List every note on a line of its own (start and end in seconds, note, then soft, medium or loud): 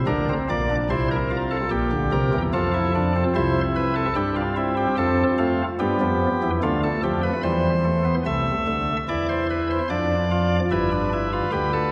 0.07 0.33 D2 medium
0.07 0.33 D3 medium
0.07 0.26 D4 medium
0.07 0.33 A#4 medium
0.29 0.47 C4 medium
0.50 0.76 A#1 medium
0.50 0.75 A#2 medium
0.50 0.68 A#3 medium
0.50 0.75 D5 medium
0.70 0.88 D4 medium
0.90 1.61 C2 medium
0.90 1.61 C3 medium
0.90 1.16 E4 medium
0.90 1.08 C5 medium
1.11 1.37 A#4 medium
1.31 1.56 F4 medium
1.51 1.69 A4 medium
1.71 1.89 A#1 medium
1.71 1.89 A#2 medium
1.71 2.42 G4 medium
1.91 2.10 D2 medium
1.91 2.10 D3 medium
2.12 2.30 C2 medium
2.12 2.31 C3 medium
2.12 2.38 A#4 medium
2.33 2.51 E2 medium
2.33 2.51 E3 medium
2.53 3.24 F2 medium
2.53 3.24 F3 medium
2.53 2.71 F4 medium
2.53 3.24 A4 medium
2.74 2.92 E4 medium
2.95 3.13 D4 medium
3.16 3.33 C4 medium
3.35 4.06 C2 loud
3.35 4.06 C3 medium
3.35 4.05 E4 medium
3.35 3.61 C5 medium
3.76 3.94 B4 medium
3.95 4.14 A4 medium
4.15 4.86 G2 medium
4.15 4.87 G3 loud
4.15 4.41 D4 medium
4.15 4.34 G4 medium
4.36 4.54 F4 medium
4.56 5.62 C4 medium
4.56 4.75 E4 medium
4.77 4.95 G4 medium
4.98 5.23 F2 loud
4.98 5.23 F3 loud
4.98 5.23 A4 medium
5.38 5.64 A3 medium
5.38 5.64 F4 medium
5.79 5.98 G2 medium
5.79 5.97 G3 medium
5.79 6.50 B3 medium
5.79 6.50 G4 medium
6.00 6.26 F2 medium
6.00 6.26 F3 medium
6.43 6.60 E2 medium
6.43 6.60 E3 medium
6.63 6.88 D2 loud
6.63 6.88 D3 loud
6.63 7.33 A3 medium
6.63 6.80 F4 medium
6.83 7.01 A4 medium
7.04 7.29 F2 medium
7.04 7.29 F3 medium
7.04 7.21 G4 medium
7.23 7.41 B4 medium
7.43 8.15 E2 medium
7.43 8.14 E3 medium
7.43 7.70 G3 medium
7.43 8.14 C5 medium
7.85 8.03 A3 medium
8.05 8.23 B3 medium
8.26 8.52 C2 medium
8.26 8.52 C3 medium
8.26 8.97 A3 medium
8.26 8.97 E5 medium
8.67 8.93 D2 medium
8.67 8.93 D3 medium
9.09 9.79 E2 medium
9.09 9.79 E3 medium
9.09 9.79 E4 medium
9.09 9.26 D5 medium
9.29 9.46 C5 medium
9.50 9.67 B4 medium
9.71 9.88 C5 medium
9.90 10.60 F2 medium
9.90 10.60 F3 medium
9.90 10.15 D4 medium
9.90 10.60 D5 medium
10.31 10.56 F4 medium
10.71 11.41 G1 medium
10.71 11.42 G2 medium
10.71 10.89 E4 medium
10.71 11.92 B4 medium
10.92 11.09 D4 medium
11.13 11.30 E4 medium
11.33 11.50 F4 medium
11.52 11.92 D2 medium
11.52 11.92 D3 medium
11.52 11.70 G4 medium
11.73 11.91 A4 medium